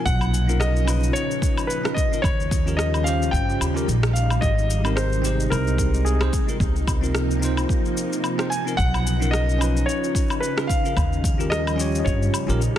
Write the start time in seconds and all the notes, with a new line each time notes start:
Already playing: A#2
0.05 B1 C#3 F3 D#4 F#5, kick, shaker
0.21 low woodblock, shaker
0.34 shaker
0.47 C#4 D#4 F4 A#4, shaker
0.60 D#5, cross-stick, shaker
0.76 shaker
0.85 C#4 D#4 F4, low woodblock, shaker
0.90 B4
1.03 shaker
1.13 C#5, shaker
1.31 shaker
1.42 kick, shaker
1.57 low woodblock, shaker
1.67 B4, shaker
1.84 C#4 D#4 F4 B4, cross-stick, shaker
1.94 D#5, kick, shaker
2.11 C#4 D#4 F4 A#4, shaker
2.22 D#2 C#3 G3 C#5, kick, low woodblock, shaker
2.40 shaker
2.51 kick, shaker
2.66 C#4 F4 G4 A#4, shaker
2.77 D#5, cross-stick, shaker
2.94 low woodblock, shaker
3.03 C#4 F4 G4 F5, shaker
3.09 C5
3.22 shaker
3.31 G2 G5, kick, shaker
3.50 shaker
3.60 D#2, low woodblock, shaker
3.74 C#4 F4 G4 A#4, shaker
3.88 A#1, shaker
4.03 cross-stick, shaker
4.13 F5, shaker
4.30 low woodblock, shaker
4.41 G#1 C3 G#3 D#5, kick, shaker
4.59 shaker
4.70 shaker
4.84 C4 D#4 G4 A#4, low woodblock, shaker
4.96 C5, cross-stick, shaker
5.13 shaker
5.22 C4 D#4 G4, shaker
5.27 C5
5.40 shaker
5.50 C2 A#4, low woodblock, shaker
5.67 shaker
5.78 kick, shaker
5.94 shaker
6.05 G#4, shaker
6.20 C4 D#4 G4 C5, cross-stick, low woodblock, shaker
6.33 F3 A#3, kick, shaker
6.47 C4 D#4 F4 A#4, shaker
6.60 C#2, kick, shaker
6.76 shaker
6.87 kick, low woodblock, shaker
7.01 C4 D#4 F4 A#4, shaker
7.15 cross-stick, shaker
7.31 shaker
7.40 C4 D#4 F4, shaker
7.45 C5
7.57 low woodblock, shaker
7.69 kick, shaker
7.86 shaker
7.97 shaker
8.13 shaker
8.24 low woodblock, shaker
8.38 C4 D#4 F4 C5, cross-stick, shaker
8.50 G#5, shaker
8.65 C4 D#4 F4 A#4, shaker
8.77 B1 C#3 F#5, kick, shaker
8.94 low woodblock, shaker
9.07 shaker
9.20 C#4 D#4 F4 A#4, shaker
9.31 D#5, cross-stick, shaker
9.49 shaker
9.58 C#4 D#4 F4, low woodblock, shaker
9.63 B4
9.77 shaker
9.86 C#5, shaker
10.04 shaker
10.15 kick, shaker
10.30 low woodblock, shaker
10.40 B4, shaker
10.57 C#4 D#4 F4 B4, cross-stick, shaker
10.67 F5, kick, shaker
10.84 C#4 D#4 F4 A#4, shaker
10.97 D#2 F3 G3, kick, low woodblock, shaker
11.13 shaker
11.24 kick, shaker
11.38 C#4 F4 G4 A#4, shaker
11.50 D#5, cross-stick, shaker
11.67 low woodblock, shaker
11.76 C#4 F4 G4, shaker
11.81 C#5
11.95 shaker
11.99 D#5
12.05 G2 C#5, kick, shaker
12.23 shaker
12.34 low woodblock, shaker
12.47 A#1 C#4 F4 G4 A#4, shaker
12.62 shaker